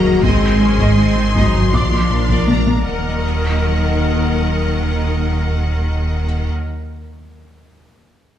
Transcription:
Already playing: sub bass D#1, analog synth pad B2 F#3 F#4 D#5, cello section F#3, viola section A#3, french horn section F#4, felt piano G#4 A#4, violin section F#5 A#5
0.04 analog synth bass D#2, double bass section D#2, synth pluck D#4, violin section D#5
0.22 sub bass G#1, double bass section G#1, analog synth bass G#2, analog synth pad D#3 G#4 C5 D#5, synth pluck G#3, cello section G#3, viola section C4, french horn section G#4, violin section D#5 G#5 C6, taiko
0.41 double bass section G#1, analog synth bass G#2, synth pluck G#4, violin section D#5
0.59 double bass section G#1, analog synth bass G#3, viola section C#4, synth pluck D#4, violin section C5
0.78 double bass section G#1, analog synth bass G#2, synth pluck G#3, violin section D#5, taiko
0.97 double bass section G#1, analog synth bass G#3, viola section C4, synth pluck D#4, violin section D#5
1.16 double bass section G#1, analog synth bass G#3, synth pluck D#4, violin section C5
1.35 double bass section G#1, analog synth bass G#2, cello section F#3, synth pluck G#3, viola section D#4, french horn section F#4, violin section D#5, taiko
1.54 double bass section G#1, analog synth bass G#2, synth pluck C4, violin section D#5
1.72 sub bass A#1, double bass section A#1, analog synth bass A#2, cello section F3, analog synth pad F3 A#3 A#4 D5, synth pluck A#3, viola section D4, french horn section F4, violin section D5 F5, felt piano D6, taiko
1.92 double bass section A#1, analog synth bass A#3, synth pluck F4, violin section D5
2.10 double bass section A#1, analog synth bass A#2, synth pluck D4, violin section A#4
2.29 double bass section A#1, analog synth bass A#2, synth pluck A#3, violin section D5, taiko
2.47 double bass section A#1, analog synth bass A#3, synth pluck F4, violin section D5 A#5, taiko high
2.66 analog synth bass A#2, taiko high
2.85 sub bass D#1, double bass section D#2, cello section D#3, analog synth pad F#3 A#3 A#4 D#5, french horn section D#4, viola section A#4, violin section D#5 F#5

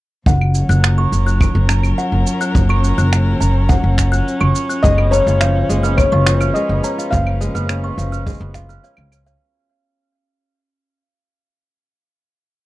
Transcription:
0.26 upright bass F#1, string quartet F#3, kalimba F#5, kick, shaker
0.41 claves
0.55 string quartet C#4, shaker
0.69 upright bass F#1, kalimba F#6, shaker
0.77 string quartet A#4
0.84 finger snap, shaker
0.98 kalimba C#6
1.12 upright bass F#1, shaker
1.26 kalimba F#6, shaker
1.41 kick, claves, shaker
1.55 upright bass F#1
1.69 kalimba A#5, finger snap, shaker
1.83 claves, shaker
1.98 kalimba F#5, shaker
2.12 upright bass F#1
2.27 shaker
2.41 kalimba F#6, shaker
2.55 upright bass F#1, kick, shaker
2.69 kalimba C#6, claves
2.84 shaker
2.98 upright bass F#1, kalimba F#6, shaker
3.13 finger snap, shaker
3.41 upright bass F#1, kalimba A#5, shaker
3.69 kalimba F#5, kick, shaker
3.84 upright bass F#1
3.98 finger snap, kick, shaker
4.12 kalimba F#6, shaker
4.28 shaker
4.41 upright bass F#1, kalimba C#6, claves
4.55 shaker
4.69 kalimba F#6, shaker
4.83 upright bass F#1, kora G#3, felt piano D#5, kick, shaker
4.98 kora B3, claves
5.11 kora C#4, felt piano C#5, kalimba A#5, shaker
5.27 upright bass F#1, kora F4, shaker
5.41 kora F3, kalimba F5, finger snap, shaker
5.69 upright bass F#1, kora G#3, shaker
5.74 string quartet B4
5.83 kora B3, kalimba F6, shaker
5.97 kora C#4, felt piano C#5, kick, claves, shaker
6.12 upright bass F#1, kora F4, kalimba C#6
6.26 kora F3, finger snap, shaker
6.41 kalimba F6, claves, shaker
6.54 kora G#3, felt piano D#5, shaker
6.69 upright bass F#1, kora B3
6.83 kora C#4, kalimba A#5, shaker
6.98 kora F4, shaker
7.11 upright bass F#1, kora F3, felt piano F5, kalimba F5, kick, shaker
7.27 claves
7.41 kora G#3, shaker
7.55 upright bass F#1, kora B3, kalimba F6, shaker
7.69 kora C#4, finger snap, shaker
7.83 kora F4, kalimba C#6
7.98 upright bass F#1, kora F3, shaker
8.12 kalimba F6, shaker
8.26 kora G#3, kick, shaker
8.29 shaker
8.32 shaker
8.37 upright bass F#1, kora B3, shaker
8.54 kora F4, kalimba F5, finger snap, kick, shaker
8.69 kora B4, kalimba F6, shaker
8.83 kora C#4, kalimba F5, shaker
8.97 upright bass C#2, claves
9.12 kora C#4, claves, shaker
9.26 kora C#4, kalimba F5, shaker

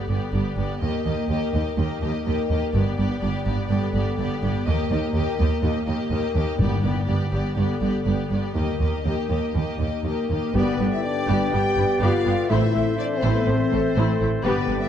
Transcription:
Already playing: harp G2 D3 G4
0.08 double bass section G1, cello section G2, viola section B3, harp B3, violin section G4 D5
0.33 double bass section G1, cello section G2, viola section B3, harp G4, violin section G4 D5
0.57 double bass section G1, cello section G2, harp B3, viola section B3, violin section G4 D5
0.81 double bass section D#2, cello section D#2, harp D#3, viola section A#3, violin section G4 D#5
1.05 double bass section D#2, cello section D#2, viola section A#3, harp D#4, violin section G4 D#5
1.29 double bass section D#2, cello section D#2, viola section A#3, violin section G4 D#5, harp A#4
1.53 double bass section D#2, cello section D#2, viola section A#3, harp D#4, violin section G4 D#5
1.77 double bass section D#2, cello section D#2, harp A#3, viola section A#3, violin section G4 D#5
2.01 double bass section D#2, cello section D#2, viola section A#3, harp D#4, violin section G4 D#5
2.25 double bass section D#2, cello section D#2, viola section A#3, violin section G4 D#5, harp A#4
2.49 double bass section D#2, cello section D#2, viola section A#3, harp D#4, violin section G4 D#5
2.73 double bass section G1, harp G2, cello section G2, viola section B3, violin section G4 D5
2.98 double bass section G1, cello section G2, viola section B3, violin section G4 D5
3.21 double bass section G1, cello section G2, viola section B3, harp G4, violin section G4 D5
3.46 double bass section G1, cello section G2, harp B3, viola section B3, violin section G4 D5
3.68 double bass section G1, cello section G2, harp D3, viola section B3, violin section G4 D5
3.94 double bass section G1, cello section G2, harp B3, viola section B3, violin section G4 D5
4.18 double bass section G1, cello section G2, viola section B3, harp G4, violin section G4 D5
4.42 double bass section G1, cello section G2, viola section B3, harp B3, violin section G4 D5
4.67 cello section D#2, double bass section D#2, harp D#3, viola section A#3, violin section G4 D#5
4.91 cello section D#2, double bass section D#2, viola section A#3, harp D#4, violin section G4 D#5
5.14 cello section D#2, double bass section D#2, viola section A#3, violin section G4 D#5, harp A#4
5.39 cello section D#2, double bass section D#2, viola section A#3, harp D#4, violin section G4 D#5
5.63 cello section D#2, double bass section D#2, harp A#3, viola section A#3, violin section G4 D#5
5.86 double bass section D#2, cello section D#2, viola section A#3, harp D#4, violin section G4 D#5
6.10 double bass section D#2, cello section D#2, viola section A#3, violin section G4 D#5, harp A#4
6.35 cello section D#2, double bass section D#2, viola section A#3, harp D#4, violin section G4 D#5
6.59 double bass section G1, cello section G2, timpani G2, harp G2, viola section B3, violin section G4 D5
6.82 double bass section G1, cello section G2, harp B3, viola section B3, violin section G4 D5
7.06 double bass section G1, cello section G2, viola section B3, violin section G4 D5, harp G4
7.30 double bass section G1, cello section G2, viola section B3, harp B3, violin section G4 D5
7.56 double bass section G1, cello section G2, harp D3, viola section B3, violin section G4 D5
7.80 double bass section G1, cello section G2, harp B3, viola section B3, violin section G4 D5
8.05 double bass section G1, cello section G2, viola section B3, violin section G4 D5, harp G4
8.30 double bass section G1, cello section G2, viola section B3, harp B3, violin section G4 D5
8.55 cello section D#2, double bass section D#2, harp D#3, viola section A#3, violin section G4 D#5
8.80 cello section D#2, double bass section D#2, viola section A#3, harp D#4, violin section G4 D#5
9.05 double bass section D#2, cello section D#2, viola section A#3, violin section G4 D#5, harp A#4
9.29 double bass section D#2, cello section D#2, viola section A#3, harp D#4, violin section G4 D#5
9.54 double bass section D#2, cello section D#2, harp A#3, viola section A#3, violin section G4
9.58 violin section D#5
9.79 cello section D#2, double bass section D#2, viola section A#3, harp D#4, violin section G4 D#5
10.04 double bass section D#2, cello section D#2, viola section A#3, violin section G4, harp A#4
10.08 violin section D#5
10.30 cello section D#2, double bass section D#2, viola section A#3, harp D#4, violin section G4 D#5
10.53 double bass section G1, harp G2, cello section G2, trombone section G3 B3, french horn section B3, viola section B3 G4, clarinet B4, violin section B4, oboe D5, flute G5
10.58 violin section D5
10.67 harp D3
10.79 double bass section G1, cello section G2, harp B3, viola section B3, violin section G4
10.91 harp D4, french horn section E4, violin section E5
11.03 french horn section D4, harp G4, violin section D5
11.15 harp B4
11.28 double bass section G1, cello section G2, viola section B3 G4, violin section D5
11.52 double bass section G1, cello section G2, viola section B3, french horn section G4, violin section G4 G5, harp D5
11.64 harp B4
11.76 double bass section G1, cello section G2, viola section B3 D4, violin section B4
11.89 harp B3
12.00 double bass section G1, cello section G2, harp D3, viola section B3 G4, french horn section F4, violin section D5 F5
12.13 harp B3
12.25 double bass section G1, cello section G2, harp D3, viola section B3, violin section G4
12.38 harp B3
12.48 double bass section A1, harp A2, cello section A2, trombone section E3 C4, viola section A3 E4, french horn section E4, clarinet A4, violin section C5 E5, oboe C5, flute E5
12.62 harp E3
12.74 double bass section A1, cello section A2, viola section A3, harp A3, violin section E4
12.86 harp C4
12.98 french horn section D4, harp C5, violin section D5
13.10 harp A4
13.14 french horn section C4, violin section C5
13.22 double bass section A1, cello section A2, viola section A3 E4, harp C5, violin section C5
13.30 french horn section B3, violin section B4
13.34 harp C6
13.46 double bass section A1, cello section A2, viola section A3, french horn section C4, violin section E4 C5, harp C5
13.58 harp A4
13.71 double bass section A1, cello section A2, viola section A3 C4, harp C4, violin section A4
13.83 harp A3
13.95 double bass section A1, cello section A2, harp E3, viola section A3 E4, violin section C5
14.07 harp A3
14.19 double bass section A1, cello section A2, harp E3, viola section A3, violin section E4
14.31 harp A3
14.43 double bass section G1, harp G2, cello section G2, trombone section G3 B3, french horn section B3, viola section B3 G4, violin section B4, clarinet B4, oboe D5, flute G5
14.55 harp D3
14.67 double bass section G1, cello section G2, harp B3, viola section B3, violin section D4
14.80 harp D4, french horn section E4, violin section E5

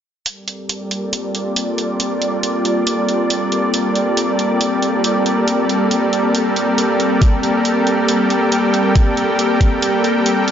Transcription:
0.26 analog synth pad G3, supersaw synth G3 G4 A4 A#4 D5, closed hi-hat
0.36 analog synth pad C4
0.48 closed hi-hat
0.69 analog synth pad A#3 F4, closed hi-hat
0.91 closed hi-hat
1.12 analog synth pad D5, closed hi-hat
1.35 closed hi-hat
1.56 closed hi-hat
1.78 closed hi-hat
2.00 closed hi-hat
2.22 closed hi-hat
2.43 closed hi-hat
2.65 closed hi-hat
2.87 closed hi-hat
3.09 closed hi-hat
3.30 closed hi-hat
3.52 closed hi-hat
3.74 closed hi-hat
3.95 closed hi-hat
4.17 closed hi-hat
4.39 closed hi-hat
4.61 closed hi-hat
4.82 closed hi-hat
5.04 closed hi-hat
5.26 closed hi-hat
5.48 closed hi-hat
5.69 closed hi-hat
5.91 closed hi-hat
6.13 closed hi-hat
6.35 closed hi-hat
6.56 closed hi-hat
6.78 closed hi-hat
6.93 analog synth pad G4
7.00 closed hi-hat
7.22 supersaw synth G5, kick, closed hi-hat
7.43 closed hi-hat
7.65 closed hi-hat
7.87 closed hi-hat
8.09 closed hi-hat
8.30 closed hi-hat
8.52 closed hi-hat
8.74 closed hi-hat
8.96 kick, closed hi-hat
9.17 closed hi-hat
9.39 closed hi-hat
9.61 kick, closed hi-hat
9.82 closed hi-hat
10.04 closed hi-hat
10.26 closed hi-hat
10.48 closed hi-hat

